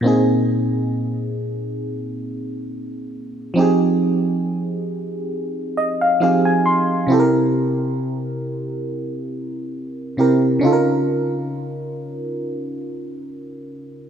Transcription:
0.01 A#2 A#3 C4
0.06 D#4 G#4
3.54 F3 C4 D#4
3.59 G4 G#4
5.77 D#5
6.01 F5
6.20 F3 C4 D#4 G4 G#4 F5
6.45 G#5
6.66 C6
7.07 C3 C4 E4
7.12 G4 A4
7.20 A#4
10.17 C3 C4 E4 G4 A#4
10.59 C#3 C#4 D#4
10.65 F4 A4
10.73 A#4

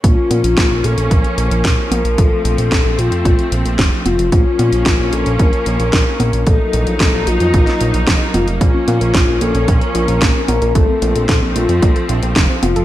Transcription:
0.04 A#1 F3 A#3 C#4 F4, kick, closed hi-hat
0.31 A#2, closed hi-hat, high conga
0.44 A#1, closed hi-hat
0.57 A#1, kick, snare, closed hi-hat
0.71 A#1
0.84 A#1 A4, closed hi-hat
0.97 A#1, closed hi-hat
1.11 A#1 A#4, kick, closed hi-hat
1.24 closed hi-hat
1.38 A#1, closed hi-hat
1.51 A#1, closed hi-hat
1.65 A#1, kick, snare, closed hi-hat
1.91 A#1 A#4, closed hi-hat, high conga
2.05 A#1, closed hi-hat
2.18 A#1 A3 C4 A4, kick, closed hi-hat
2.45 A#1, closed hi-hat
2.58 A#1, closed hi-hat
2.71 A#1 A4, kick, snare, closed hi-hat
2.85 A#1
2.98 A#1 F4, closed hi-hat
3.12 F2, closed hi-hat
3.25 A#1, kick, closed hi-hat
3.39 closed hi-hat
3.52 A#1, closed hi-hat
3.65 A#1, closed hi-hat
3.79 F1, kick, snare, closed hi-hat
4.05 F1 F4, closed hi-hat, high conga
4.19 F1, closed hi-hat
4.32 A#1 F3 A#3 C#4 F4, kick, closed hi-hat
4.59 A#2, closed hi-hat, high conga
4.73 A#1, closed hi-hat
4.86 A#1, kick, snare, closed hi-hat
4.99 A#1
5.13 A#1 A4, closed hi-hat
5.26 A#1, closed hi-hat
5.39 A#1 A#4, kick, closed hi-hat
5.53 closed hi-hat
5.66 A#1, closed hi-hat
5.80 A#1, closed hi-hat
5.93 A#1, kick, snare, closed hi-hat
6.20 A#1 A#4, closed hi-hat, high conga
6.33 A#1, closed hi-hat
6.47 A#1 F#3 A#3 D#4 A4, kick, closed hi-hat
6.73 A#1, closed hi-hat
6.87 A#1, closed hi-hat
7.00 A#1 A4, kick, snare, closed hi-hat
7.14 A#1
7.27 A#1 F4, closed hi-hat
7.40 F2, closed hi-hat
7.54 A#1, kick, closed hi-hat
7.67 snare, closed hi-hat
7.81 A#1, closed hi-hat
7.94 A#1, closed hi-hat
8.07 F1, kick, snare, closed hi-hat
8.34 F1 F4, closed hi-hat, high conga
8.48 F1, closed hi-hat
8.61 A#1 F3 A#3 C#4 F4, kick, closed hi-hat
8.74 C#4
8.88 A#2 F4, closed hi-hat, high conga
9.01 A#1 A#4, closed hi-hat
9.14 A#1 F4, kick, snare, closed hi-hat
9.28 A#1 C#4
9.41 A#1 A#3 A4, closed hi-hat
9.55 A#1 C#4, closed hi-hat
9.68 A#1 F4 A#4, kick, closed hi-hat
9.81 A#4, closed hi-hat
9.95 A#1 F4, closed hi-hat
10.08 A#1 C#4, closed hi-hat
10.22 A#1 A#3, kick, snare, closed hi-hat
10.35 C#4
10.48 A#1 F4 A#4, closed hi-hat, high conga
10.62 A#1 A#4, closed hi-hat
10.75 A#1 F3 A3 C4 A4, kick, closed hi-hat
10.89 C4
11.02 A#1 F4, closed hi-hat
11.15 A#1 A4, closed hi-hat
11.29 A#1 F4 A4, kick, snare, closed hi-hat
11.42 A#1 C4
11.56 A#1 A3 F4, closed hi-hat
11.69 F2 C4, closed hi-hat
11.82 A#1 F4, kick, closed hi-hat
11.96 A4, closed hi-hat
12.09 A#1 F4, closed hi-hat
12.23 A#1 C4, closed hi-hat
12.36 F1 A3, kick, snare, closed hi-hat
12.49 C4
12.63 F1 F4, closed hi-hat, high conga
12.76 F1 A4, closed hi-hat

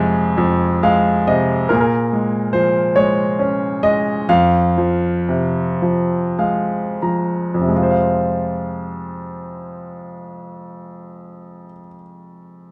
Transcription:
Already playing: F2 C3 G#3 C4 F4 G#4
0.37 F2
0.83 G#3 F5
1.27 C3 D#5
1.69 A#2 A#4
1.75 G#4
1.81 A#4
2.13 G#3
2.53 F3 C5
2.96 G#3 C#5
3.39 C#4
3.83 G#3 D#5
4.29 F2 F5
4.78 F3
5.29 C3
5.82 F3
6.39 G#3 F5
7.02 F3 A#5
7.54 F2
7.61 C3
7.68 G#3
7.76 F4
7.83 C5
7.90 F5

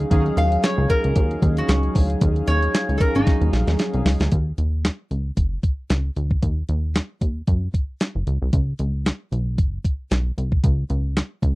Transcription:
0.00 closed hi-hat
0.10 D#2 F#3 C#4 D#4 G#4 F5, kick, closed hi-hat
0.26 closed hi-hat
0.37 D#2 F5, closed hi-hat
0.52 closed hi-hat
0.64 C#5, snare, clap, closed hi-hat
0.78 C#2
0.90 A#4, kick, closed hi-hat
1.04 C#2, closed hi-hat
1.16 D#2, kick, closed hi-hat
1.31 closed hi-hat
1.42 D#2, kick, closed hi-hat
1.57 F#4, closed hi-hat
1.69 C#2, snare, clap, closed hi-hat
1.83 closed hi-hat
1.95 D2, kick, open hi-hat
2.10 closed hi-hat
2.21 D#2, kick, closed hi-hat
2.36 closed hi-hat
2.47 D#2 C#5, closed hi-hat
2.62 closed hi-hat
2.75 snare, clap, closed hi-hat
2.89 C#2, closed hi-hat
2.98 A4 A#4, kick, closed hi-hat
3.15 G#1 D#4, closed hi-hat
3.27 kick, snare, closed hi-hat
3.41 D#2, closed hi-hat
3.53 A#1, snare, closed hi-hat
3.67 D#2, snare, closed hi-hat
3.79 snare, closed hi-hat
3.94 C2, closed hi-hat
4.05 C#2, snare, open hi-hat
4.20 D2, snare, closed hi-hat
4.32 D#2, kick, closed hi-hat
4.58 D#2, closed hi-hat
4.85 snare, clap, closed hi-hat
5.11 C#2, closed hi-hat
5.37 F#1, kick, closed hi-hat
5.63 kick, closed hi-hat
5.90 C#2, snare, clap, closed hi-hat
6.16 D2, closed hi-hat
6.31 kick
6.42 D#2, kick, closed hi-hat
6.69 D#2, closed hi-hat
6.96 snare, clap, closed hi-hat
7.21 D#2, kick, closed hi-hat
7.47 F#2, kick, closed hi-hat
7.74 kick, closed hi-hat
8.00 snare, clap, closed hi-hat
8.15 F#1
8.27 C#2, closed hi-hat
8.42 C2
8.53 C#2, kick, closed hi-hat
8.79 C#2, closed hi-hat
9.06 snare, clap, closed hi-hat
9.32 B1, closed hi-hat
9.58 F#1, kick, closed hi-hat
9.85 kick, closed hi-hat
10.11 B1, snare, clap, closed hi-hat
10.38 C2, closed hi-hat
10.52 kick
10.64 C#2, kick, closed hi-hat
10.90 C#2, closed hi-hat
11.17 snare, clap, closed hi-hat
11.42 C#2, kick, closed hi-hat

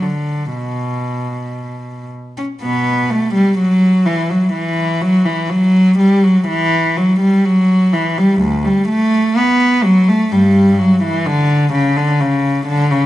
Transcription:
0.02 D3
0.56 B2
2.37 C#4
2.62 B2 B3
3.10 A3
3.35 G3
3.58 F#3
4.06 E3
4.30 F#3
4.53 E3
5.02 F#3
5.25 E3
5.50 F#3
5.99 G3
6.24 F#3
6.48 E3
6.97 F#3
7.20 G3
7.45 F#3
7.93 E3
8.18 G3
8.42 D2
8.65 G3
8.89 A3
9.37 B3
9.84 F#3
10.09 A3
10.32 G2 G3
10.79 F#3
11.03 E3
11.26 D3
11.73 C#3
11.97 D3
12.21 C#3
12.67 D3
12.91 C#3

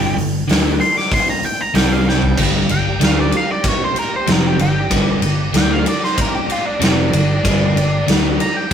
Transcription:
Already playing: G1 G2 D3 G3 G4
0.17 G1 G2 D3, open hi-hat
0.48 D2 D3 A3 D4, snare, open hi-hat
0.80 C6, open hi-hat
0.97 D6, snare
1.11 C6, kick, open hi-hat
1.30 A#5
1.43 G5, open hi-hat
1.61 A#5
1.74 C2 C3 G3 C4 G5, snare, open hi-hat
1.92 F5
2.09 G5, snare
2.22 floor tom
2.36 G1 G2 D3 G3 D4 G4 A#5, kick, crash
2.68 G1 G2 D3 G5, ride
3.00 D2 D3 A3 D4 F5, snare, ride
3.20 D5
3.32 ride
3.37 F5
3.52 D5
3.64 kick, ride
3.68 C#5
3.84 C5
3.96 A#4, ride
4.16 C5
4.27 F1 F2 C3 F3, snare, ride
4.32 A#4
4.47 G4
4.59 G1 G2 D3 G4, ride
4.90 G1 G2 D3 G3 D4 G4 D5 A#5, kick, ride
5.22 G1 G2 D3, ride
5.53 D2 D3 A3 D4 G5, snare, ride
5.71 F5
5.86 D5, ride
6.04 C5, snare
6.18 A#4, kick, ride
6.35 G4
6.50 F4, ride
6.66 D4
6.79 F1 F2 C3 F3 D4, snare, ride
7.11 G1 G2 D3, ride
7.44 G1 G2 D3 G3 D#4 G#4 B4, kick, ride
7.65 D4 G4 D5 A#5
7.76 G1 G2 D3, ride
8.07 D2 D3 A3 D4, snare, ride
8.40 A#5, ride
8.56 G5

